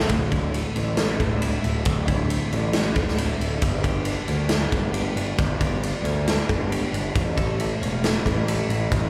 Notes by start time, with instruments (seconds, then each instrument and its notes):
0.09 picked electric bass D1, clean electric guitar D2, kick, ride
0.32 clean electric guitar E4, kick, ride
0.54 clean electric guitar A3, ride
0.76 picked electric bass A1, clean electric guitar D3, ride
0.97 clean electric guitar A2, snare, ride
1.20 picked electric bass D1, clean electric guitar A3, kick, ride
1.42 clean electric guitar E4, ride
1.63 picked electric bass D1, clean electric guitar A3, ride
1.85 picked electric bass D1, clean electric guitar D2, kick, ride
2.07 clean electric guitar E4, kick, ride
2.30 clean electric guitar A3, ride
2.52 picked electric bass A1, clean electric guitar D3, ride
2.73 clean electric guitar A2, snare, ride
2.95 picked electric bass D1, clean electric guitar A3, kick, ride
3.08 snare
3.18 clean electric guitar E4, ride
3.39 picked electric bass D1, clean electric guitar A3, ride
3.61 picked electric bass G1, clean electric guitar G2, kick, ride
3.83 clean electric guitar G4, kick, ride
4.05 clean electric guitar D4, ride
4.28 picked electric bass D2, clean electric guitar A#3, ride
4.49 clean electric guitar G3, snare, ride
4.72 picked electric bass G1, clean electric guitar D4, kick, ride
4.93 clean electric guitar G4, ride
5.16 picked electric bass G1, clean electric guitar D4, ride
5.38 picked electric bass G1, clean electric guitar G2, kick, ride
5.61 clean electric guitar G4, kick, ride
5.82 clean electric guitar D4, ride
6.03 picked electric bass D2, clean electric guitar A#3, ride
6.27 clean electric guitar G3, snare, ride
6.49 picked electric bass G1, clean electric guitar D4, kick, ride
6.72 clean electric guitar G4, ride
6.92 picked electric bass G1, clean electric guitar D4, ride
7.15 picked electric bass A1, clean electric guitar A2, kick, ride
7.37 clean electric guitar A4, kick, ride
7.60 clean electric guitar E4, ride
7.81 picked electric bass E1, clean electric guitar C#4, ride
8.04 clean electric guitar A3, snare, ride
8.26 picked electric bass A1, clean electric guitar E4, kick, ride
8.48 clean electric guitar A4, ride
8.69 picked electric bass A1, clean electric guitar E4, ride
8.92 picked electric bass A1, clean electric guitar A2, kick, ride